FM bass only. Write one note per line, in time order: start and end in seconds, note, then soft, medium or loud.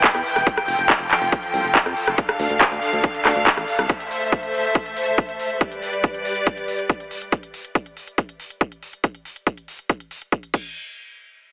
0.15 0.23 E2 medium
0.36 0.44 E1 medium
0.68 0.76 F1 medium
0.79 0.87 F1 medium
1.00 1.08 F1 medium
1.22 1.30 F1 medium
1.54 1.62 C2 medium
1.65 1.73 F1 medium
1.86 1.94 F2 medium
2.07 2.15 F1 medium
2.40 2.48 D2 medium
2.50 2.58 D2 medium
2.72 2.80 D2 medium
2.93 3.01 D2 medium
3.25 3.33 D2 medium
3.36 3.44 D2 medium
3.57 3.65 A1 medium
3.79 3.87 C2 medium